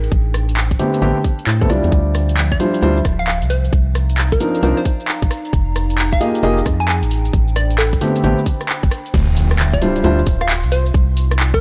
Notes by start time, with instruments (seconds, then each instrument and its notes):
Already playing: ambient pad D4 G5
0.03 ambient pad C5, closed hi-hat
0.12 fm bass A1, kick, closed hi-hat
0.34 cross-stick, open hi-hat
0.49 closed hi-hat
0.57 clap
0.71 kick, closed hi-hat
0.79 grand piano D3 A3 B3 C4 G4, open hi-hat
0.94 closed hi-hat
1.02 fm bass A1, grand piano D3 A3 B3 C4 G4, closed hi-hat
1.24 kick, open hi-hat
1.39 closed hi-hat
1.47 fm bass A2, clap
1.61 grand piano D3 A3 B3 C4 A4, kick, closed hi-hat
1.69 fm bass C2, grand piano G3 D4 E4 F4 D5, cross-stick, open hi-hat
1.84 fm bass E2, closed hi-hat
1.92 fm bass D2, ambient pad F3, kick, closed hi-hat, shaker
2.12 ambient pad E5, cross-stick, open hi-hat, shaker
2.29 closed hi-hat, shaker
2.37 clap, shaker
2.52 synth pluck D5, kick, closed hi-hat, shaker
2.60 grand piano G3 D4 E4 F4 C5, open hi-hat, shaker
2.74 closed hi-hat, shaker
2.82 fm bass D2, grand piano G3 D4 E4 F4 C5, closed hi-hat, shaker
2.97 shaker
3.05 fm bass D1, kick, cross-stick, open hi-hat, shaker
3.19 synth pluck F5, shaker
3.27 synth pluck F5, cross-stick, clap, shaker
3.42 fm bass C2, closed hi-hat, shaker
3.50 synth pluck C5, open hi-hat, shaker
3.65 closed hi-hat, shaker
3.72 fm bass C2, ambient pad D#4, kick, closed hi-hat, shaker
3.85 ambient pad A#5
3.95 ambient pad D5, cross-stick, open hi-hat, shaker
4.03 ambient pad F5
4.10 closed hi-hat, shaker
4.18 clap, shaker
4.32 synth pluck A#4, kick, closed hi-hat, shaker
4.40 grand piano F3 C4 D4 D#4 A#4, open hi-hat, shaker
4.55 closed hi-hat, shaker
4.63 fm bass C2, grand piano F3 C4 D4 D#4 A#4, synth pluck C5, closed hi-hat, shaker
4.77 synth pluck C5, shaker
4.85 kick, open hi-hat, shaker
5.00 shaker
5.08 clap, shaker
5.22 fm bass A#1, kick, closed hi-hat, shaker
5.31 cross-stick, open hi-hat, shaker
5.45 closed hi-hat, shaker
5.53 fm bass F1, kick, closed hi-hat, shaker
5.61 ambient pad G5
5.71 ambient pad G#4
5.76 cross-stick, open hi-hat, shaker
5.90 closed hi-hat, shaker
5.98 clap, shaker
6.12 synth pluck F5, kick, closed hi-hat, shaker
6.21 grand piano A#3 F4 G4 G#4 D#5, open hi-hat, shaker
6.35 closed hi-hat, shaker
6.43 fm bass F1, grand piano A#3 F4 G4 G#4 D#5, closed hi-hat, shaker
6.58 shaker
6.66 fm bass F2, kick, cross-stick, open hi-hat, shaker
6.80 synth pluck G#5, shaker
6.88 synth pluck G#5, cross-stick, clap, shaker
7.03 fm bass A1, closed hi-hat, shaker
7.11 ambient pad D4, open hi-hat, shaker
7.20 ambient pad C5
7.25 closed hi-hat, shaker
7.33 fm bass A1, kick, closed hi-hat, shaker
7.47 ambient pad B5, shaker
7.56 synth pluck D5, cross-stick, open hi-hat, shaker
7.71 closed hi-hat, shaker
7.78 synth pluck A4, clap, shaker
7.93 kick, closed hi-hat, shaker
8.01 grand piano D3 A3 B3 C4 G4, open hi-hat, shaker
8.16 closed hi-hat, shaker
8.24 fm bass A1, grand piano D3 A3 B3 C4 G4, closed hi-hat, shaker
8.38 shaker
8.46 kick, open hi-hat, shaker
8.61 cross-stick, closed hi-hat, shaker
8.69 clap, shaker
8.83 fm bass G1, kick, closed hi-hat, shaker
8.91 cross-stick, open hi-hat, shaker
9.06 closed hi-hat, shaker
9.14 fm bass D2, ambient pad F4, kick, closed hi-hat, crash, impact, shaker
9.29 ambient pad E5
9.37 open hi-hat, shaker
9.51 cross-stick, closed hi-hat, shaker
9.59 clap, shaker
9.67 ambient pad C6
9.73 synth pluck D5, kick, closed hi-hat, shaker
9.82 grand piano G3 D4 E4 F4 C5, open hi-hat, shaker
9.96 closed hi-hat, shaker
10.04 fm bass D2, grand piano G3 D4 E4 F4 C5, closed hi-hat, shaker
10.19 shaker
10.27 fm bass D1, kick, open hi-hat, shaker
10.41 synth pluck F5, cross-stick, shaker
10.49 synth pluck F5, clap, shaker
10.64 fm bass C2, closed hi-hat, shaker
10.72 synth pluck C5, open hi-hat, shaker
10.86 closed hi-hat, shaker
10.94 fm bass C2, ambient pad D#4, kick, closed hi-hat, shaker
11.10 ambient pad D5
11.17 open hi-hat, shaker
11.24 ambient pad A#5
11.31 cross-stick, closed hi-hat, shaker
11.39 ambient pad F5, clap, shaker
11.54 synth pluck A#4, kick, cross-stick, closed hi-hat, shaker